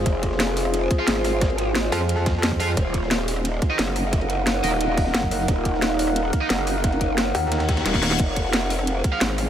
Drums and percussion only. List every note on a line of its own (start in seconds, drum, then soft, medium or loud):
0.06 kick loud
0.06 closed hi-hat medium
0.06 ride medium
0.23 kick medium
0.23 closed hi-hat medium
0.23 ride medium
0.31 snare soft
0.40 snare loud
0.40 closed hi-hat loud
0.40 ride medium
0.57 snare medium
0.57 open hi-hat medium
0.57 ride medium
0.65 cross-stick soft
0.65 ride soft
0.74 closed hi-hat medium
0.74 ride medium
0.91 kick loud
0.91 closed hi-hat medium
0.91 ride medium
1.08 snare loud
1.08 closed hi-hat medium
1.08 ride medium
1.16 cross-stick soft
1.25 cross-stick soft
1.25 snare loud
1.25 open hi-hat medium
1.25 ride medium
1.41 kick loud
1.41 snare loud
1.41 closed hi-hat medium
1.41 ride medium
1.50 ride soft
1.58 closed hi-hat medium
1.58 ride medium
1.75 snare loud
1.75 closed hi-hat medium
1.75 ride medium
1.92 open hi-hat medium
1.92 ride medium
2.01 cross-stick soft
2.01 snare soft
2.09 closed hi-hat medium
2.09 ride medium
2.26 kick loud
2.26 snare loud
2.26 closed hi-hat medium
2.26 ride medium
2.35 snare soft
2.43 snare loud
2.43 closed hi-hat medium
2.43 ride medium
2.52 kick medium
2.60 cross-stick soft
2.60 open hi-hat medium
2.60 ride medium
2.69 snare soft
2.77 kick loud
2.77 closed hi-hat medium
2.77 ride medium
2.94 kick medium
2.94 closed hi-hat medium
2.94 ride medium
3.03 snare soft
3.11 snare loud
3.11 closed hi-hat medium
3.11 ride medium
3.28 snare medium
3.28 open hi-hat medium
3.28 ride medium
3.36 cross-stick soft
3.36 ride soft
3.45 closed hi-hat medium
3.45 ride medium
3.62 kick loud
3.62 closed hi-hat medium
3.62 ride medium
3.79 snare loud
3.79 closed hi-hat medium
3.79 ride medium
3.87 cross-stick soft
3.96 cross-stick soft
3.96 open hi-hat medium
3.96 ride medium
4.13 kick loud
4.13 closed hi-hat medium
4.13 ride medium
4.21 ride soft
4.30 closed hi-hat medium
4.30 ride medium
4.47 snare loud
4.47 closed hi-hat loud
4.47 ride medium
4.64 open hi-hat medium
4.64 ride medium
4.72 cross-stick soft
4.72 snare soft
4.81 closed hi-hat medium
4.81 ride medium
4.97 kick loud
4.97 closed hi-hat medium
4.97 open hi-hat medium
5.06 snare soft
5.14 snare loud
5.14 closed hi-hat medium
5.14 ride medium
5.23 kick medium
5.31 cross-stick soft
5.31 open hi-hat medium
5.31 ride medium
5.40 snare soft
5.48 kick loud
5.48 closed hi-hat loud
5.48 ride medium
5.65 kick medium
5.65 closed hi-hat medium
5.65 ride medium
5.74 snare soft
5.82 snare loud
5.82 closed hi-hat loud
5.82 ride medium
5.99 snare medium
5.99 open hi-hat medium
5.99 ride medium
6.08 cross-stick soft
6.08 ride soft
6.16 closed hi-hat loud
6.16 ride medium
6.33 kick loud
6.33 closed hi-hat medium
6.33 ride medium
6.50 snare loud
6.50 closed hi-hat medium
6.50 ride medium
6.59 cross-stick soft
6.67 cross-stick soft
6.67 open hi-hat medium
6.67 ride medium
6.84 kick loud
6.84 closed hi-hat loud
6.84 ride medium
6.92 ride soft
7.01 kick medium
7.01 closed hi-hat medium
7.01 ride medium
7.18 snare loud
7.18 closed hi-hat loud
7.18 ride medium
7.35 open hi-hat medium
7.35 ride medium
7.52 snare loud
7.52 closed hi-hat loud
7.52 ride medium
7.60 snare loud
7.60 ride medium
7.69 kick loud
7.69 snare loud
7.69 closed hi-hat medium
7.69 ride medium
7.77 snare loud
7.77 ride medium
7.86 snare loud
7.86 snare medium
7.86 closed hi-hat loud
7.86 ride medium
7.94 kick medium
7.94 snare medium
8.03 snare loud
8.03 snare medium
8.03 open hi-hat medium
8.03 ride medium
8.11 snare medium
8.19 kick loud
8.19 closed hi-hat loud
8.19 ride loud
8.36 kick medium
8.36 closed hi-hat medium
8.36 ride medium
8.45 snare soft
8.53 snare loud
8.53 closed hi-hat loud
8.53 ride medium
8.70 snare medium
8.70 open hi-hat medium
8.70 ride medium
8.79 cross-stick soft
8.79 ride soft
8.87 closed hi-hat loud
8.87 ride medium
9.04 kick loud
9.04 closed hi-hat medium
9.04 ride medium
9.21 snare loud
9.21 closed hi-hat loud
9.21 ride medium
9.30 cross-stick medium
9.38 cross-stick soft
9.38 open hi-hat medium
9.38 ride medium